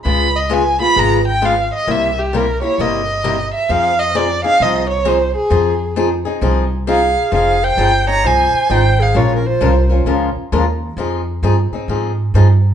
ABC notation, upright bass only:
X:1
M:4/4
L:1/8
Q:"Swing" 1/4=132
K:Fm
V:1 name="Upright bass" clef=bass
D,,4 A,,,4 | C,,4 G,,,4 | F,,4 C,,4 | F,,4 C,,4 |
F,,,2 G,,,2 C,, z A,,,2 | B,,,2 C,,2 D,, z E,,2 | F,,2 G,, z A,,2 G,,2 |]